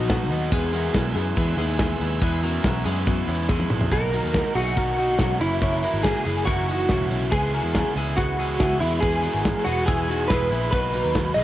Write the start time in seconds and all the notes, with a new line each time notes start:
Already playing: A#1 B3 F#4 F#5 D#6
0.08 B2 F#3 B3 D#4 F#4, kick, snare, closed hi-hat
0.30 D#2 F#3 B3 D#4, open hi-hat
0.51 E2 E3 G#3 B3 E4 G#4 B4 G#5 E6, kick, closed hi-hat
0.73 G#3 B3 E4 F#4 A#4, open hi-hat
0.94 B1 E3 G#3 B3 E4 F#4, kick, snare, closed hi-hat
1.14 F#2 B3 E4 G#4, open hi-hat
1.18 G#3
1.36 E2 E3 G#3 B3 E4 G#4 B4, kick, closed hi-hat
1.57 D#2 G#3 B3 D#4 E4 G#4, open hi-hat
1.79 E3 G#3 B3 E4 G#4, kick, snare, closed hi-hat
2.00 D#2 G#3 B3 E4, open hi-hat
2.22 E2 E3 G#3 B3 E4 G#4 B4, kick, closed hi-hat
2.43 G#3 B3 C#4 E4 F#4 A#4, open hi-hat
2.63 B1 E3 G#3 B3 E4, kick, snare, closed hi-hat
2.85 F#2 G#3 B3 E4 G#4, open hi-hat
3.06 E3 G#3 B3 E4 F#4, kick, closed hi-hat
3.28 E2 G#3 B3 C#4 E4, open hi-hat
3.49 E3 G#3 B3 E4 G#4, kick, snare
3.60 high tom
3.70 A#1 G#3 B3 E4, mid tom
3.81 floor tom
3.92 B1 B2 F#3 A#3 D#4 F#4 A#4 B4, kick, closed hi-hat
4.13 F#3 A#3 D#4 F#4 A#4, open hi-hat
4.24 D#2
4.34 B2 F#3 A#3 D#4, kick, snare, closed hi-hat
4.55 B1 F#3 A#3 D#4 E4 F#4 G#4, open hi-hat
4.77 B2 F#3 A#3 D#4 F#4 A#4, kick, closed hi-hat
4.98 F#3 A#3 D#4 F#4, open hi-hat
5.19 B1 B2 F#3 A#3 C#4 D#4 F#4, kick, snare, closed hi-hat
5.40 F#1 E3 A#3 E4, open hi-hat
5.61 F#2 C#3 E3 A#3 E4 A#4 C#5, kick
5.83 E3 A#3 E4 F#4 A#4, open hi-hat
5.94 G#1
6.03 C#3 E3 A#3 E4 G#4, kick, snare, closed hi-hat
6.25 F#1 E3 A#3 E4 G#4, open hi-hat
6.45 F#2 C#3 E3 A#3 E4 F#4 A#4, kick, closed hi-hat
6.68 E3 A#3 D#4 E4 F#4, open hi-hat
6.89 E1 C#3 E3 A#3 C#4 E4 F#4, kick, snare
7.10 B1 E3 A#3 E4, open hi-hat
7.31 C#2 C#3 G#3 B3 E4 G#4 B4, kick, closed hi-hat
7.53 G#3 B3 E4 F#4 A#4, open hi-hat
7.64 E2
7.74 C#3 G#3 B3 E4, kick, snare, closed hi-hat
7.96 C#2 G#3 B3 E4 G#4, open hi-hat
8.17 C#3 G#3 B3 E4 F#4 G#4 B4, kick, closed hi-hat
8.38 G#3 B3 E4 G#4, open hi-hat
8.59 C#2 C#3 G#3 B3 E4 G#4, kick, snare, closed hi-hat
8.80 E2 G#3 B3 E4, open hi-hat
9.00 E3 G#3 B3 E4 G#4 B4, kick, closed hi-hat
9.22 G#3 B3 E4 F#4 A#4, open hi-hat
9.34 G#1
9.44 E3 G#3 B3 E4, kick, snare, closed hi-hat
9.65 E1 G#3 B3 E4 F#4 G#4, open hi-hat
9.86 E3 G#3 B3 E4 G#4, kick, closed hi-hat
10.09 G#3 B3 D#4 E4 F#4, open hi-hat
10.28 E1 E3 G#3 B3 E4 G#4 B4, kick, snare
10.51 A#1 G#3 B3 E4, open hi-hat
10.71 B1 B2 F#3 A#3 D#4 F#4 B4, kick, closed hi-hat
10.93 F#3 A#3 D#4 F#4 A#5, open hi-hat
11.05 D#2
11.15 B2 F#3 A#3 D#4, kick, snare, closed hi-hat
11.34 B1 F#3 A#3 D#4 E4 G#4 D#5, open hi-hat